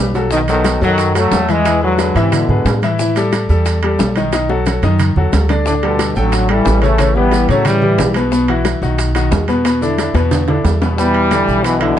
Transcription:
Already playing: B1
0.14 F#3 F#4 A4, high bongo, high conga, low timbale, maracas
0.31 B2 D#3 D#4 D#5, high bongo, high conga, maracas
0.48 B2 D#3 F#3 F#4 A4, high conga, high timbale, maracas
0.64 high bongo, high conga, high timbale, low timbale, maracas
0.81 F#2 D#3 F#3 F#4 A4, high conga, maracas
0.98 high bongo, high conga, high timbale, maracas
1.15 F#3 A3 F#4 A4, high conga, high timbale, maracas
1.31 E2, high bongo, low bongo, high conga, low timbale, maracas
1.49 E3 G#3 E4 E5, high conga, high timbale, maracas
1.65 E3 E4 E5, high bongo, high conga, high timbale, maracas
1.82 D3 F#3 G#3 G#4 B4, high bongo, high conga
1.99 G#3 G#4 B4, high bongo, high conga, high timbale, low timbale, maracas
2.15 G#2 C3 E3 E4 E5, high conga, high timbale, maracas
2.32 B2 D3, high bongo, high conga, low conga, high timbale, maracas
2.48 G#2 G#3 G#4 B4, high bongo, high conga, low conga
2.65 A2, high bongo, low bongo, high conga, high timbale, low timbale, maracas
2.82 E3 E4 E5, high bongo, high conga, high timbale, maracas
2.99 E3 E4 E5, high bongo, high conga, maracas
3.16 G3 G4 A4, high conga, high timbale, maracas
3.33 high bongo, high conga, high timbale, low timbale, maracas
3.49 E2 G3 G4 A4, high conga, maracas
3.66 high bongo, high conga, high timbale, maracas
3.83 G3 G4 A4, high conga, high timbale
3.99 B1, high bongo, low bongo, high conga, low timbale, maracas
4.16 D#3 D#4 D#5, high conga, high timbale, maracas
4.33 D#3 D#4 D#5, high bongo, high timbale, maracas
4.49 F#3 F#4 A4, high bongo, high conga
4.66 F#3 F#4 A4, low bongo, high conga, high timbale, low timbale, maracas
4.82 F#2 D#3 D#4 D#5, low bongo, high conga, high timbale, maracas
4.99 high conga, low conga, high timbale, maracas
5.16 E2 F#3 F#4 A4, high conga, low conga
5.33 D2, low bongo, high conga, high timbale, low timbale, maracas
5.49 D3 D4 D5, low bongo, high conga, high timbale, maracas
5.66 A2 D3 D4 D5, high bongo, maracas
5.82 B2 D3 G3 G4 A4, high conga, high timbale
5.99 high bongo, high conga, high timbale, low timbale, maracas
6.16 A1 D3 F#3 A3 A4 G5, high conga, maracas
6.32 high bongo, high conga, high timbale, maracas
6.49 E3 G3 G4 A4, high conga, high timbale
6.65 A1, high bongo, low bongo, high conga, low timbale, maracas
6.82 C#3 E3 A3 C#4 C#5, high timbale, maracas
6.98 C#3 C#4 C#5, high bongo, high conga, high timbale, maracas
7.16 E3 G3 B3 E4 G4, high bongo, high conga
7.31 E3 E4 G4, high bongo, high conga, high timbale, low timbale, maracas
7.48 A2 C#3 F#3 A3 C#4 C#5, high timbale, maracas
7.65 E3 G3, high bongo, high conga, low conga, high timbale, maracas
7.82 E3 E4 G4, high bongo, high conga, low conga
7.98 B1, high bongo, low bongo, high conga, high timbale, low timbale, maracas
8.14 B2 B3 B4, high bongo, high conga, high timbale, maracas
8.32 B2 B3 B4, high bongo, high conga, maracas
8.48 E3 E4 F#4, high conga, high timbale
8.65 high bongo, high conga, high timbale, low timbale, maracas
8.82 B1 D#3 D#4 F#4, high conga, maracas
8.98 high bongo, high conga, high timbale, maracas
9.15 D#3 D#4 F#4, high conga, high timbale, maracas
9.32 E2, high bongo, low bongo, high conga, low timbale, maracas
9.48 B2 B3 B4, high conga, high timbale, maracas
9.65 B2 B3 B4, high bongo, high conga, high timbale, maracas
9.81 D3 D4 E4, high bongo, high conga, maracas
9.98 D3 D4 E4, high bongo, high conga, high timbale, low timbale, maracas
10.14 E2 B2 B3 B4, high bongo, high conga, high timbale, maracas
10.31 high bongo, high conga, low conga, high timbale, maracas
10.48 D3 D4 E4, high bongo, high conga, low conga, high timbale
10.64 E2, low bongo, high conga, low timbale, maracas
10.81 B2 B3 B4, low bongo, high conga, low timbale, maracas
10.98 B2 E3 G3 B3 B4, high bongo, high conga, maracas
11.14 high conga, high timbale
11.31 D3 D4 D5, high bongo, high conga, high timbale, low timbale, maracas
11.47 B1, high conga, maracas
11.64 B2 E3 B3 B4 B5, high bongo, high conga, high timbale, maracas
11.80 B2 D3 E3 E4 E5, high conga, high timbale

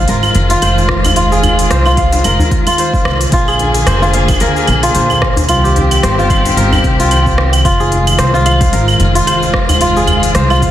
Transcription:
Already playing: D#3 G#3 F4 G#4 C5 F5
0.08 G#1 A#4, open hi-hat, shaker
0.23 claves, shaker
0.35 F1, open hi-hat, djembe tone
0.50 F4, open hi-hat, shaker
0.62 F1 C5, open hi-hat, claves, shaker
0.78 djembe slap, djembe tone, shaker
0.89 kick, cross-stick
1.04 open hi-hat, djembe slap, djembe tone, djembe bass, claves, shaker
1.16 F4, open hi-hat, shaker
1.32 G#4, djembe slap, shaker
1.43 open hi-hat, djembe tone, djembe bass, claves
1.59 open hi-hat, shaker
1.71 C2 C5, cross-stick, open hi-hat, shaker
1.86 F4, claves, shaker
1.97 F5, kick, open hi-hat
2.12 open hi-hat, djembe slap, djembe tone, shaker
2.24 F1 A#4, open hi-hat, claves, shaker
2.39 djembe bass, shaker
2.51 kick, open hi-hat, djembe tone
2.67 F4, open hi-hat, djembe tone, claves, shaker
2.78 C5, open hi-hat, shaker
2.94 kick, djembe tone, shaker
3.05 C2, cross-stick, claves
3.21 open hi-hat, shaker
3.32 A#1 D3 A#3 F4 G#4, kick, open hi-hat, shaker
3.48 G#4, claves, shaker
3.59 open hi-hat, djembe tone
3.74 open hi-hat, shaker
3.87 F1 C5, cross-stick, open hi-hat, claves, shaker
4.02 F4, shaker
4.13 F5, open hi-hat
4.28 kick, open hi-hat, djembe slap, djembe tone, claves, shaker
4.40 D2 A#4, open hi-hat, shaker
4.56 shaker
4.67 A#1, open hi-hat, djembe tone, claves
4.83 F4, open hi-hat, shaker
4.95 A#1 C5, open hi-hat, shaker
5.10 djembe slap, djembe tone, claves, shaker
5.22 kick, cross-stick
5.37 open hi-hat, djembe slap, djembe tone, djembe bass, shaker
5.48 C2 D#3 C4 F4 G4, open hi-hat, claves, shaker
5.64 G4, djembe slap, shaker
5.76 open hi-hat, djembe tone, djembe bass
5.91 open hi-hat, claves, shaker
6.03 G1 C5, cross-stick, open hi-hat, shaker
6.19 F4, shaker
6.30 F5, kick, open hi-hat, claves
6.45 open hi-hat, djembe slap, djembe tone, shaker
6.57 G1 A#4, open hi-hat, shaker
6.73 djembe bass, claves, shaker
6.84 C2, kick, open hi-hat, djembe tone
7.00 F4, open hi-hat, djembe tone, shaker
7.11 C5, open hi-hat, claves, shaker
7.26 kick, djembe tone, shaker
7.38 cross-stick
7.53 open hi-hat, claves, shaker
7.65 F1 D#3 G#3 F4, kick, open hi-hat, claves, shaker
7.80 G#4, shaker
7.91 open hi-hat, djembe tone
8.07 open hi-hat, claves, shaker
8.18 C2 C5, cross-stick, open hi-hat, shaker
8.34 F4, shaker
8.46 F5, open hi-hat, claves
8.61 kick, open hi-hat, djembe slap, djembe tone, shaker
8.73 G#1 A#4, open hi-hat, shaker
8.88 claves, shaker
9.00 F1, open hi-hat, djembe tone
9.15 F4, open hi-hat, shaker
9.27 F1 C5, open hi-hat, claves, shaker
9.42 djembe slap, djembe tone, shaker
9.54 kick, cross-stick
9.69 open hi-hat, djembe slap, djembe tone, djembe bass, claves, shaker
9.81 F4, open hi-hat, shaker
9.96 G#4, djembe slap, shaker
10.07 open hi-hat, djembe tone, djembe bass, claves
10.23 open hi-hat, shaker
10.35 C2 C5, cross-stick, open hi-hat, shaker
10.50 F4, claves, shaker
10.62 F5, kick, open hi-hat

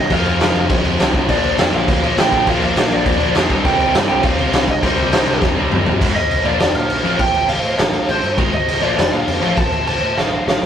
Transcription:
Already playing: D#5
0.10 F1 F2 C3 F3 G#3 C4 F5, kick, crash
0.25 F1, crash
0.40 F1, snare, crash
0.55 F1, crash
0.70 A#1, kick, crash
0.84 F1 F2 C3 F3 G#3 C4, crash
0.99 C2 F2 C3 F3 G#3 C4, snare, crash
1.14 kick, crash
1.28 A#1 A#2 F3 A#3 D4 D5, kick, crash
1.44 A#1, crash
1.58 F2, snare, crash
1.73 A#1 F5, crash
1.88 D2, kick, crash
2.02 A#1 A#2 F3 A#3 D4, crash
2.17 A#1 A#2 F3 A#3 D4 G5, snare, crash
2.32 A#1, kick, crash
2.46 A#1 A#2 F3 A#3 D4, kick, crash
2.50 F5
2.62 A#1 F5, crash
2.76 A#1, snare, crash
2.91 A#1 D5, crash
3.06 D#2, kick, crash
3.20 A#1 A#2 F3 A#3 D4, crash
3.35 F2 A#2 F3 A#3 D4, snare, crash
3.49 C2 C3 G3 C4 D#4, kick, crash
3.65 C2 G5, kick, crash
3.80 C2, crash
3.94 G2, snare, crash
4.09 C2 G5, crash
4.23 D#2 C3 G3 C4 D#4 F5, kick, crash
4.38 C2 C3 G3 C4 D#4, crash
4.53 C2, snare, crash
4.68 C2 D#5, kick, crash
4.83 C2 C3 G3 C4 D#4 C5, kick, crash
4.98 C2, crash
5.12 C2, snare, crash
5.27 C2, crash
5.42 F2, kick, snare
5.56 C2 C3 G3 C4 D#4
5.70 G1 C3 G3 C4 D#4, mid tom
5.86 floor tom
6.01 G#1 G#2 D#3 G#3 C4 D#4, kick, crash
6.15 G#1 D#5, crash
6.30 C2, crash
6.45 A#1 A#2 D3 F3 A#3 F4 D5, crash
6.59 F1 D5, snare, crash
6.74 A#2 F5, crash
6.89 A#1, crash
7.03 A1 F2 A2 C3 F3 A3 C4 F4, crash
7.19 A1 G5, kick, crash
7.34 A1, crash
7.48 A1 F5, crash
7.63 A2 F3 A3 C4 F4, crash
7.79 A1 F5, snare, crash
7.93 crash
8.09 A1 C5, crash
8.23 G2, crash
8.38 G#1 G#2 D#3 G#3 C4 D#4, kick, crash
8.53 G#1 D#5, crash
8.68 A1, crash
8.83 A#1 A#2 D3 F3 A#3 F4 D5, crash
8.98 F1 D5, snare, crash
9.13 A#2 F5, crash
9.28 F2, crash
9.41 A1 F2 A2 C3 F3 A3 C4 F4, crash
9.57 A1 A5, kick, crash
9.72 A1, crash
9.87 A1 A5, crash
10.02 A2 F3 A3 C4 F4, crash
10.17 A1 F5, snare
10.47 A1 F5, snare
10.62 G2

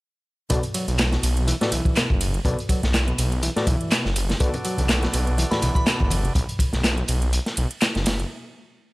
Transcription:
0.50 B1 B2 F#4 A4 B4 D5, kick, closed hi-hat
0.63 closed hi-hat
0.74 F#3, closed hi-hat, ride
0.88 B1, closed hi-hat
0.98 snare, clap, closed hi-hat
1.12 B2, snare, closed hi-hat
1.23 B1, closed hi-hat, ride
1.37 closed hi-hat
1.47 E3, closed hi-hat
1.61 A2 F#4 A4 B4 D5, snare, closed hi-hat
1.72 B1 E3, closed hi-hat, ride
1.85 kick, closed hi-hat
1.96 B2, snare, clap, closed hi-hat
2.10 F#1, kick
2.21 closed hi-hat, ride
2.34 closed hi-hat
2.45 B1 B2 F#4 A4 B4 D5, kick, closed hi-hat
2.59 closed hi-hat
2.69 F#3, kick, closed hi-hat, ride
2.83 B1, snare, closed hi-hat
2.94 snare, clap, closed hi-hat
3.08 B2, closed hi-hat
3.18 B1, closed hi-hat, ride
3.32 closed hi-hat
3.43 E3, closed hi-hat
3.56 A2 F#4 A4 B4 D5, snare, closed hi-hat
3.67 B1 E3, kick, closed hi-hat, ride
3.81 closed hi-hat
3.91 B2, snare, clap, closed hi-hat
4.05 F#1, snare
4.16 closed hi-hat, ride
4.29 snare, closed hi-hat
4.40 B1 B2 B3 F#4 A4 B4 D5, kick, closed hi-hat
4.54 closed hi-hat, muted conga
4.65 F#3, closed hi-hat, ride
4.78 B1, closed hi-hat, muted conga, high conga, low conga
4.89 snare, clap, closed hi-hat
5.03 B2, snare, closed hi-hat
5.13 B1, closed hi-hat, ride, muted conga
5.27 closed hi-hat
5.38 E3, closed hi-hat, muted conga
5.51 A2 F#4 A4 B4 D5 B5, snare, closed hi-hat, high conga
5.62 B1 E3 B5, closed hi-hat, ride, low conga
5.75 B5, kick, closed hi-hat, muted conga
5.87 B2, snare, clap, closed hi-hat
6.00 F#1, kick, muted conga
6.11 closed hi-hat, ride, high conga
6.24 closed hi-hat, low conga
6.35 B1, kick, closed hi-hat
6.49 closed hi-hat
6.59 kick, closed hi-hat, ride
6.73 B1, snare, closed hi-hat
6.84 snare, clap, closed hi-hat
6.98 closed hi-hat
7.08 B1, closed hi-hat, ride
7.22 closed hi-hat
7.33 closed hi-hat
7.46 snare, closed hi-hat
7.57 B1, closed hi-hat, ride
7.71 closed hi-hat
7.81 snare, clap, closed hi-hat
7.95 F#1, snare, closed hi-hat
8.06 snare, closed hi-hat, ride
8.20 closed hi-hat

